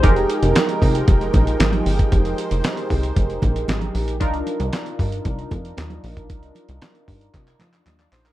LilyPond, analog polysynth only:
\new Staff \with { instrumentName = "Analog polysynth" } { \time 4/4 \key f \dorian \tempo 4 = 115 << { c''16 r2. r8. | r1 | r1 | r2. r16 d''16 c''16 bes'16 | } \\ { <ees' g' aes' bes'>1~ | <ees' g' aes' bes'>1 | <d' ees' f' bes'>1~ | <d' ees' f' bes'>1 | } >> }